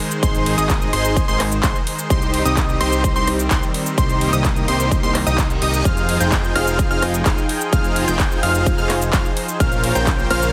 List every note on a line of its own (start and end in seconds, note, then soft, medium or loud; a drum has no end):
0.00 2.06 D#3 medium
0.00 2.06 G#3 medium
0.00 2.06 C5 medium
0.11 closed hi-hat medium
0.11 cabasa medium
0.23 0.56 G#1 loud
0.23 0.55 D#4 medium
0.23 0.55 G#4 medium
0.23 0.55 C5 medium
0.23 0.55 C6 medium
0.23 kick loud
0.23 closed hi-hat medium
0.23 cabasa medium
0.35 closed hi-hat soft
0.35 cabasa soft
0.46 open hi-hat loud
0.46 ride medium
0.58 0.91 G#1 loud
0.58 0.90 D#4 medium
0.58 0.90 G#4 medium
0.58 0.90 D#5 medium
0.58 0.90 D#6 medium
0.58 closed hi-hat medium
0.58 cabasa medium
0.70 kick loud
0.70 clap loud
0.70 closed hi-hat medium
0.70 cabasa medium
0.82 cabasa soft
0.93 1.26 G#1 loud
0.93 1.25 D#4 medium
0.93 1.25 G#4 medium
0.93 1.25 C5 loud
0.93 1.25 C6 loud
0.93 open hi-hat loud
0.93 ride medium
1.05 closed hi-hat medium
1.05 cabasa medium
1.17 kick loud
1.17 closed hi-hat medium
1.17 cabasa medium
1.28 1.61 G#1 loud
1.28 1.41 D#4 loud
1.28 1.41 G#4 medium
1.28 1.41 C5 loud
1.28 1.41 C6 loud
1.28 cabasa soft
1.40 cross-stick medium
1.40 clap medium
1.40 open hi-hat loud
1.40 ride medium
1.52 closed hi-hat medium
1.52 cabasa medium
1.63 1.74 G#1 loud
1.63 1.76 D#4 medium
1.63 1.76 G#4 medium
1.63 1.76 C5 medium
1.63 1.76 C6 medium
1.63 kick loud
1.63 clap loud
1.63 closed hi-hat medium
1.63 cabasa medium
1.76 cabasa soft
1.87 open hi-hat loud
1.87 ride medium
1.99 closed hi-hat medium
1.99 cabasa medium
2.10 2.43 C2 loud
2.10 5.81 D#3 medium
2.10 5.81 G3 medium
2.10 3.96 C4 medium
2.10 2.43 D#4 medium
2.10 2.43 G4 medium
2.10 2.43 C5 medium
2.10 2.43 C6 medium
2.10 kick loud
2.10 closed hi-hat medium
2.10 cabasa medium
2.22 closed hi-hat soft
2.22 cabasa soft
2.34 open hi-hat loud
2.34 ride medium
2.45 2.78 C2 loud
2.45 2.78 D#4 medium
2.45 2.78 G4 medium
2.45 2.78 D#5 medium
2.45 2.78 D#6 medium
2.45 closed hi-hat medium
2.45 cabasa medium
2.57 kick loud
2.57 clap loud
2.57 closed hi-hat medium
2.57 cabasa medium
2.69 cabasa soft
2.81 3.13 C2 loud
2.81 3.13 D#4 medium
2.81 3.13 G4 medium
2.81 3.13 C5 loud
2.81 3.13 C6 loud
2.81 cross-stick medium
2.81 open hi-hat loud
2.81 ride medium
2.92 closed hi-hat medium
2.92 cabasa medium
3.04 kick loud
3.04 closed hi-hat medium
3.04 cabasa medium
3.16 3.48 C2 loud
3.16 3.28 D#4 loud
3.16 3.28 G4 medium
3.16 3.28 C5 loud
3.16 3.28 C6 loud
3.16 cabasa soft
3.27 cross-stick medium
3.27 open hi-hat loud
3.27 ride medium
3.39 closed hi-hat medium
3.39 cabasa medium
3.51 3.61 C2 loud
3.51 3.64 D#4 medium
3.51 3.64 G4 medium
3.51 3.64 C5 medium
3.51 3.64 C6 medium
3.51 kick loud
3.51 clap loud
3.51 closed hi-hat medium
3.51 cabasa medium
3.63 cabasa soft
3.74 open hi-hat loud
3.74 ride medium
3.86 closed hi-hat medium
3.86 cabasa medium
3.98 4.31 C2 loud
3.98 5.83 A#3 medium
3.98 4.30 D#4 medium
3.98 4.30 G4 medium
3.98 4.30 C5 medium
3.98 4.30 C6 medium
3.98 kick loud
3.98 closed hi-hat medium
3.98 cabasa medium
4.09 closed hi-hat soft
4.09 cabasa soft
4.21 open hi-hat loud
4.21 ride medium
4.33 4.66 C2 loud
4.33 4.65 D#4 medium
4.33 4.65 G4 medium
4.33 4.65 D#5 medium
4.33 4.65 D#6 medium
4.33 closed hi-hat medium
4.33 cabasa medium
4.45 kick loud
4.45 clap loud
4.45 closed hi-hat medium
4.45 cabasa medium
4.56 closed hi-hat soft
4.56 cabasa soft
4.68 5.01 C2 loud
4.68 5.00 D#4 medium
4.68 5.00 G4 medium
4.68 5.00 C5 loud
4.68 5.00 C6 loud
4.68 open hi-hat loud
4.68 ride medium
4.80 closed hi-hat medium
4.80 cabasa medium
4.91 kick loud
4.91 closed hi-hat medium
4.91 reverse cymbal medium
4.91 cabasa medium
5.03 5.24 C2 loud
5.03 5.16 D#4 loud
5.03 5.16 G4 medium
5.03 5.16 C5 loud
5.03 5.16 C6 loud
5.03 cabasa soft
5.15 cross-stick medium
5.15 clap medium
5.15 open hi-hat loud
5.15 ride medium
5.26 5.59 C2 loud
5.26 5.47 D#4 medium
5.26 5.47 G4 medium
5.26 5.47 D#5 loud
5.26 5.47 D#6 loud
5.26 closed hi-hat medium
5.26 cabasa medium
5.38 kick loud
5.38 clap loud
5.38 closed hi-hat medium
5.38 cabasa medium
5.50 closed hi-hat soft
5.50 cabasa soft
5.62 5.83 C2 medium
5.62 5.82 D#4 medium
5.62 5.82 G4 medium
5.62 5.82 D#5 medium
5.62 5.82 D#6 loud
5.62 open hi-hat loud
5.62 ride medium
5.74 closed hi-hat medium
5.74 cabasa medium
5.85 6.18 F1 loud
5.85 9.56 F3 medium
5.85 9.56 D#4 medium
5.85 6.18 D#4 medium
5.85 6.18 F4 medium
5.85 9.56 G#4 medium
5.85 6.18 G#4 medium
5.85 10.52 C5 medium
5.85 6.18 C5 medium
5.85 6.18 F5 medium
5.85 9.56 G5 medium
5.85 6.18 F6 medium
5.85 kick loud
5.85 closed hi-hat medium
5.85 cabasa medium
5.97 closed hi-hat soft
5.97 cabasa soft
6.09 open hi-hat loud
6.09 ride medium
6.20 6.53 F1 loud
6.20 6.53 D#4 medium
6.20 6.53 F4 medium
6.20 6.53 G#4 medium
6.20 6.53 C5 medium
6.20 6.53 G5 medium
6.20 6.53 G6 medium
6.20 closed hi-hat medium
6.20 cabasa medium
6.32 kick loud
6.32 clap loud
6.32 closed hi-hat medium
6.32 cabasa medium
6.44 cabasa soft
6.55 6.88 F1 loud
6.55 6.88 D#4 medium
6.55 6.88 F4 medium
6.55 6.88 G#4 medium
6.55 6.88 C5 medium
6.55 6.88 F5 loud
6.55 6.88 F6 loud
6.55 cross-stick medium
6.55 open hi-hat loud
6.55 ride medium
6.67 closed hi-hat medium
6.67 cabasa medium
6.79 kick loud
6.79 closed hi-hat medium
6.79 cabasa medium
6.91 7.24 F1 loud
6.91 7.03 D#4 loud
6.91 7.03 F4 medium
6.91 7.03 G#4 medium
6.91 7.03 C5 medium
6.91 7.03 F5 loud
6.91 7.03 F6 loud
6.91 cabasa soft
7.02 cross-stick medium
7.02 open hi-hat loud
7.02 ride medium
7.14 closed hi-hat medium
7.14 cabasa medium
7.26 7.36 F1 loud
7.26 7.39 D#4 medium
7.26 7.39 F4 medium
7.26 7.39 G#4 medium
7.26 7.39 C5 medium
7.26 7.39 F5 medium
7.26 7.39 F6 medium
7.26 kick loud
7.26 clap loud
7.26 closed hi-hat medium
7.26 cabasa medium
7.38 cabasa soft
7.49 open hi-hat loud
7.49 ride medium
7.61 closed hi-hat medium
7.61 cabasa medium
7.73 8.06 F1 loud
7.73 8.05 D#4 medium
7.73 8.05 F4 medium
7.73 8.05 G#4 medium
7.73 8.05 C5 medium
7.73 8.05 F5 medium
7.73 8.05 F6 medium
7.73 kick loud
7.73 closed hi-hat medium
7.73 cabasa medium
7.84 closed hi-hat soft
7.84 cabasa soft
7.96 open hi-hat loud
7.96 ride medium
8.08 8.41 F1 loud
8.08 8.40 D#4 medium
8.08 8.40 F4 medium
8.08 8.40 G#4 medium
8.08 8.40 C5 medium
8.08 8.40 G5 medium
8.08 8.40 G6 medium
8.08 closed hi-hat medium
8.08 cabasa medium
8.19 kick loud
8.19 clap loud
8.19 closed hi-hat medium
8.19 cabasa medium
8.32 cabasa soft
8.43 8.76 F1 loud
8.43 8.75 D#4 medium
8.43 8.75 F4 medium
8.43 8.75 G#4 medium
8.43 8.75 C5 medium
8.43 8.75 F5 medium
8.43 8.75 F6 loud
8.43 open hi-hat loud
8.43 ride medium
8.55 closed hi-hat medium
8.55 cabasa medium
8.66 kick loud
8.66 closed hi-hat medium
8.66 cabasa medium
8.78 9.11 F1 loud
8.78 8.91 D#4 loud
8.78 8.91 F4 medium
8.78 8.91 G#4 medium
8.78 8.91 C5 medium
8.78 8.91 F5 loud
8.78 8.91 F6 loud
8.78 cabasa soft
8.90 cross-stick medium
8.90 clap medium
8.90 open hi-hat loud
8.90 ride medium
9.02 closed hi-hat medium
9.02 cabasa medium
9.13 9.24 F1 loud
9.13 9.26 D#4 medium
9.13 9.26 F4 medium
9.13 9.26 G#4 medium
9.13 9.26 C5 medium
9.13 9.26 F5 medium
9.13 9.26 F6 medium
9.13 kick loud
9.13 clap loud
9.13 closed hi-hat medium
9.13 cabasa medium
9.25 cabasa soft
9.37 open hi-hat loud
9.37 ride medium
9.48 closed hi-hat medium
9.48 cabasa medium
9.60 9.93 A#1 loud
9.60 10.52 C#3 medium
9.60 10.52 A#3 medium
9.60 9.93 C#4 medium
9.60 9.93 F4 medium
9.60 9.93 A#4 medium
9.60 9.93 C5 medium
9.60 9.93 F5 medium
9.60 9.93 F6 medium
9.60 kick loud
9.60 closed hi-hat medium
9.60 cabasa medium
9.72 closed hi-hat soft
9.72 cabasa soft
9.84 open hi-hat loud
9.84 ride medium
9.95 10.28 A#1 loud
9.95 10.28 C#4 medium
9.95 10.28 F4 medium
9.95 10.28 A#4 medium
9.95 10.28 C5 medium
9.95 10.28 G5 medium
9.95 10.28 G6 medium
9.95 closed hi-hat medium
9.95 cabasa medium
10.07 kick loud
10.07 clap loud
10.07 closed hi-hat medium
10.07 cabasa medium
10.19 cabasa soft
10.30 10.52 A#1 loud
10.30 10.52 C#4 medium
10.30 10.52 F4 medium
10.30 10.52 A#4 medium
10.30 10.52 C5 medium
10.30 10.52 F5 loud
10.30 10.52 F6 loud
10.30 cross-stick medium
10.30 open hi-hat loud
10.30 ride medium
10.42 closed hi-hat medium
10.42 cabasa medium